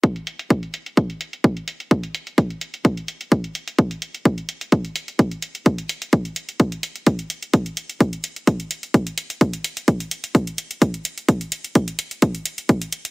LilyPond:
\new DrumStaff \with { instrumentName = "Drums" } \drummode { \time 4/4 \tempo 4 = 128 <hh bd>16 hh16 hh16 hh16 <hh bd>16 hh16 hh16 hh16 <hh bd>16 hh16 hh16 hh16 <hh bd>16 hh16 hh16 hh16 | <hh bd>16 hh16 hh16 hh16 <hh bd>16 hh16 hh16 hh16 <hh bd>16 hh16 hh16 hh16 <hh bd>16 hh16 hh16 hh16 | <hh bd>16 hh16 hh16 hh16 <hh bd>16 hh16 hh16 hh16 <hh bd>16 hh16 hh16 hh16 <hh bd>16 hh16 hh16 hh16 | <hh bd>16 hh16 hh16 hh16 <hh bd>16 hh16 hh16 hh16 <hh bd>16 hh16 hh16 hh16 <hh bd>16 hh16 hh16 hh16 |
<hh bd>16 hh16 hh16 hh16 <hh bd>16 hh16 hh16 hh16 <hh bd>16 hh16 hh16 hh16 <hh bd>16 hh16 hh16 hh16 | <hh bd>16 hh16 hh16 hh16 <hh bd>16 hh16 hh16 hh16 <hh bd>16 hh16 hh16 hh16 <hh bd>16 hh16 hh16 hh16 | <hh bd>16 hh16 hh16 hh16 <hh bd>16 hh16 hh16 hh16 <hh bd>16 hh16 hh16 hh16 <hh bd>16 hh16 hh16 hh16 | }